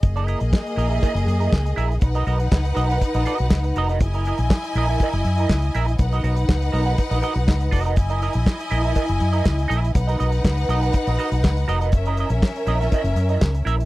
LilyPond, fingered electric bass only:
\new Staff \with { instrumentName = "Fingered electric bass" } { \clef bass \time 4/4 \key b \major \tempo 4 = 121 fis,,8. ais,,16 r8 ais,,8 r16 fis,,16 fis,8 cis,8 ais,,8 | b,,8 b,,8 cis,8 b,,8 r16 ais,,16 r16 b,,16 cis,8 eis,,8 | fis,,8. ais,,16 r8 ais,,8 r16 fis,,16 fis,8 cis,8 ais,,8 | b,,8 b,,8 cis,8 b,,8 r16 ais,,16 r16 b,,16 cis,8 eis,,8 |
fis,,8. ais,,16 r8 ais,,8 r16 fis,,16 fis,8 cis,8 ais,,8 | b,,8 b,,8 cis,8 b,,8 r16 ais,,16 r16 b,,16 cis,8 eis,,8 | fis,,8. ais,,16 r8 ais,,8 r16 fis,,16 fis,8 cis,8 ais,,8 | }